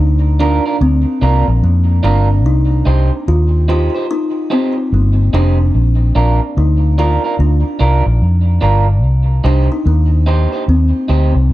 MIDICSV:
0, 0, Header, 1, 5, 480
1, 0, Start_track
1, 0, Key_signature, -3, "minor"
1, 0, Tempo, 823158
1, 1425, Time_signature, 4, 2, 24, 8
1, 6725, End_track
2, 0, Start_track
2, 0, Title_t, "Clean electric guitar"
2, 0, Program_c, 0, 27
2, 231, Note_on_c, 0, 62, 80
2, 235, Note_on_c, 0, 65, 90
2, 238, Note_on_c, 0, 70, 100
2, 368, Note_off_c, 0, 62, 0
2, 370, Note_off_c, 0, 65, 0
2, 372, Note_off_c, 0, 70, 0
2, 383, Note_on_c, 0, 70, 68
2, 386, Note_on_c, 0, 65, 62
2, 387, Note_on_c, 0, 62, 58
2, 443, Note_off_c, 0, 70, 0
2, 445, Note_off_c, 0, 62, 0
2, 445, Note_off_c, 0, 65, 0
2, 708, Note_on_c, 0, 62, 76
2, 712, Note_on_c, 0, 65, 87
2, 714, Note_on_c, 0, 70, 91
2, 847, Note_off_c, 0, 62, 0
2, 849, Note_off_c, 0, 65, 0
2, 850, Note_off_c, 0, 70, 0
2, 1184, Note_on_c, 0, 62, 97
2, 1188, Note_on_c, 0, 65, 101
2, 1191, Note_on_c, 0, 70, 94
2, 1325, Note_off_c, 0, 62, 0
2, 1327, Note_off_c, 0, 65, 0
2, 1328, Note_off_c, 0, 70, 0
2, 1664, Note_on_c, 0, 63, 79
2, 1669, Note_on_c, 0, 67, 91
2, 1673, Note_on_c, 0, 72, 95
2, 1805, Note_off_c, 0, 63, 0
2, 1807, Note_off_c, 0, 67, 0
2, 1809, Note_off_c, 0, 72, 0
2, 2148, Note_on_c, 0, 63, 84
2, 2152, Note_on_c, 0, 67, 90
2, 2153, Note_on_c, 0, 72, 97
2, 2286, Note_off_c, 0, 63, 0
2, 2289, Note_off_c, 0, 67, 0
2, 2289, Note_off_c, 0, 72, 0
2, 2301, Note_on_c, 0, 72, 72
2, 2305, Note_on_c, 0, 67, 61
2, 2309, Note_on_c, 0, 63, 60
2, 2362, Note_off_c, 0, 72, 0
2, 2364, Note_off_c, 0, 67, 0
2, 2366, Note_off_c, 0, 63, 0
2, 2625, Note_on_c, 0, 63, 86
2, 2629, Note_on_c, 0, 67, 81
2, 2632, Note_on_c, 0, 72, 87
2, 2765, Note_off_c, 0, 63, 0
2, 2767, Note_off_c, 0, 67, 0
2, 2769, Note_off_c, 0, 72, 0
2, 3109, Note_on_c, 0, 63, 95
2, 3113, Note_on_c, 0, 67, 94
2, 3116, Note_on_c, 0, 72, 111
2, 3247, Note_off_c, 0, 63, 0
2, 3249, Note_off_c, 0, 67, 0
2, 3250, Note_off_c, 0, 72, 0
2, 3587, Note_on_c, 0, 62, 79
2, 3590, Note_on_c, 0, 65, 80
2, 3592, Note_on_c, 0, 70, 78
2, 3726, Note_off_c, 0, 62, 0
2, 3727, Note_off_c, 0, 65, 0
2, 3728, Note_off_c, 0, 70, 0
2, 4070, Note_on_c, 0, 62, 74
2, 4074, Note_on_c, 0, 65, 89
2, 4077, Note_on_c, 0, 70, 97
2, 4207, Note_off_c, 0, 62, 0
2, 4209, Note_off_c, 0, 65, 0
2, 4211, Note_off_c, 0, 70, 0
2, 4223, Note_on_c, 0, 70, 70
2, 4226, Note_on_c, 0, 65, 62
2, 4229, Note_on_c, 0, 62, 57
2, 4282, Note_off_c, 0, 70, 0
2, 4284, Note_off_c, 0, 65, 0
2, 4285, Note_off_c, 0, 62, 0
2, 4545, Note_on_c, 0, 62, 88
2, 4549, Note_on_c, 0, 65, 91
2, 4551, Note_on_c, 0, 70, 89
2, 4684, Note_off_c, 0, 62, 0
2, 4687, Note_off_c, 0, 65, 0
2, 4687, Note_off_c, 0, 70, 0
2, 5021, Note_on_c, 0, 62, 96
2, 5027, Note_on_c, 0, 65, 90
2, 5028, Note_on_c, 0, 70, 105
2, 5162, Note_off_c, 0, 62, 0
2, 5165, Note_off_c, 0, 65, 0
2, 5166, Note_off_c, 0, 70, 0
2, 5504, Note_on_c, 0, 63, 90
2, 5507, Note_on_c, 0, 67, 91
2, 5511, Note_on_c, 0, 72, 94
2, 5644, Note_off_c, 0, 63, 0
2, 5645, Note_off_c, 0, 67, 0
2, 5647, Note_off_c, 0, 72, 0
2, 5985, Note_on_c, 0, 63, 84
2, 5990, Note_on_c, 0, 67, 92
2, 5992, Note_on_c, 0, 72, 107
2, 6124, Note_off_c, 0, 63, 0
2, 6126, Note_off_c, 0, 67, 0
2, 6128, Note_off_c, 0, 72, 0
2, 6136, Note_on_c, 0, 72, 69
2, 6141, Note_on_c, 0, 67, 69
2, 6146, Note_on_c, 0, 63, 59
2, 6199, Note_off_c, 0, 72, 0
2, 6201, Note_off_c, 0, 67, 0
2, 6203, Note_off_c, 0, 63, 0
2, 6463, Note_on_c, 0, 63, 69
2, 6468, Note_on_c, 0, 67, 91
2, 6472, Note_on_c, 0, 72, 88
2, 6603, Note_off_c, 0, 63, 0
2, 6606, Note_off_c, 0, 67, 0
2, 6607, Note_off_c, 0, 72, 0
2, 6725, End_track
3, 0, Start_track
3, 0, Title_t, "Kalimba"
3, 0, Program_c, 1, 108
3, 0, Note_on_c, 1, 63, 91
3, 209, Note_off_c, 1, 63, 0
3, 235, Note_on_c, 1, 62, 98
3, 454, Note_off_c, 1, 62, 0
3, 475, Note_on_c, 1, 60, 101
3, 694, Note_off_c, 1, 60, 0
3, 716, Note_on_c, 1, 58, 86
3, 948, Note_off_c, 1, 58, 0
3, 955, Note_on_c, 1, 58, 79
3, 1173, Note_off_c, 1, 58, 0
3, 1194, Note_on_c, 1, 62, 99
3, 1434, Note_on_c, 1, 63, 97
3, 1436, Note_off_c, 1, 62, 0
3, 1914, Note_on_c, 1, 65, 103
3, 1924, Note_off_c, 1, 63, 0
3, 2133, Note_off_c, 1, 65, 0
3, 2157, Note_on_c, 1, 65, 98
3, 2395, Note_on_c, 1, 63, 110
3, 2398, Note_off_c, 1, 65, 0
3, 2637, Note_off_c, 1, 63, 0
3, 2637, Note_on_c, 1, 60, 85
3, 2742, Note_off_c, 1, 60, 0
3, 2880, Note_on_c, 1, 58, 86
3, 3117, Note_on_c, 1, 62, 103
3, 3119, Note_off_c, 1, 58, 0
3, 3835, Note_on_c, 1, 63, 89
3, 3852, Note_off_c, 1, 62, 0
3, 4076, Note_off_c, 1, 63, 0
3, 4077, Note_on_c, 1, 65, 99
3, 4294, Note_off_c, 1, 65, 0
3, 4315, Note_on_c, 1, 62, 76
3, 5006, Note_off_c, 1, 62, 0
3, 5516, Note_on_c, 1, 62, 89
3, 5652, Note_off_c, 1, 62, 0
3, 5667, Note_on_c, 1, 63, 91
3, 5743, Note_off_c, 1, 63, 0
3, 5754, Note_on_c, 1, 58, 90
3, 6205, Note_off_c, 1, 58, 0
3, 6233, Note_on_c, 1, 60, 84
3, 6684, Note_off_c, 1, 60, 0
3, 6725, End_track
4, 0, Start_track
4, 0, Title_t, "Fingered electric bass"
4, 0, Program_c, 2, 33
4, 0, Note_on_c, 2, 38, 81
4, 340, Note_off_c, 2, 38, 0
4, 471, Note_on_c, 2, 38, 88
4, 605, Note_off_c, 2, 38, 0
4, 710, Note_on_c, 2, 36, 93
4, 845, Note_off_c, 2, 36, 0
4, 862, Note_on_c, 2, 34, 96
4, 939, Note_off_c, 2, 34, 0
4, 949, Note_on_c, 2, 41, 83
4, 1163, Note_off_c, 2, 41, 0
4, 1189, Note_on_c, 2, 31, 87
4, 1428, Note_off_c, 2, 31, 0
4, 1428, Note_on_c, 2, 36, 105
4, 1642, Note_off_c, 2, 36, 0
4, 1670, Note_on_c, 2, 36, 88
4, 1804, Note_off_c, 2, 36, 0
4, 1911, Note_on_c, 2, 39, 82
4, 2261, Note_off_c, 2, 39, 0
4, 2871, Note_on_c, 2, 31, 102
4, 3083, Note_off_c, 2, 31, 0
4, 3111, Note_on_c, 2, 29, 90
4, 3323, Note_off_c, 2, 29, 0
4, 3351, Note_on_c, 2, 34, 93
4, 3563, Note_off_c, 2, 34, 0
4, 3590, Note_on_c, 2, 34, 88
4, 3724, Note_off_c, 2, 34, 0
4, 3830, Note_on_c, 2, 38, 90
4, 4180, Note_off_c, 2, 38, 0
4, 4309, Note_on_c, 2, 38, 95
4, 4443, Note_off_c, 2, 38, 0
4, 4550, Note_on_c, 2, 36, 92
4, 4684, Note_off_c, 2, 36, 0
4, 4701, Note_on_c, 2, 34, 84
4, 4777, Note_off_c, 2, 34, 0
4, 4792, Note_on_c, 2, 41, 89
4, 5003, Note_off_c, 2, 41, 0
4, 5030, Note_on_c, 2, 31, 86
4, 5266, Note_off_c, 2, 31, 0
4, 5266, Note_on_c, 2, 36, 89
4, 5480, Note_off_c, 2, 36, 0
4, 5507, Note_on_c, 2, 36, 92
4, 5642, Note_off_c, 2, 36, 0
4, 5747, Note_on_c, 2, 39, 93
4, 6098, Note_off_c, 2, 39, 0
4, 6227, Note_on_c, 2, 39, 94
4, 6362, Note_off_c, 2, 39, 0
4, 6469, Note_on_c, 2, 38, 88
4, 6603, Note_off_c, 2, 38, 0
4, 6618, Note_on_c, 2, 36, 86
4, 6695, Note_off_c, 2, 36, 0
4, 6705, Note_on_c, 2, 31, 88
4, 6725, Note_off_c, 2, 31, 0
4, 6725, End_track
5, 0, Start_track
5, 0, Title_t, "Muted clean electric guitar strokes"
5, 861, Note_on_c, 9, 29, 57
5, 919, Note_off_c, 9, 29, 0
5, 2783, Note_on_c, 9, 29, 42
5, 2841, Note_off_c, 9, 29, 0
5, 4698, Note_on_c, 9, 29, 52
5, 4757, Note_off_c, 9, 29, 0
5, 6618, Note_on_c, 9, 29, 39
5, 6676, Note_off_c, 9, 29, 0
5, 6725, End_track
0, 0, End_of_file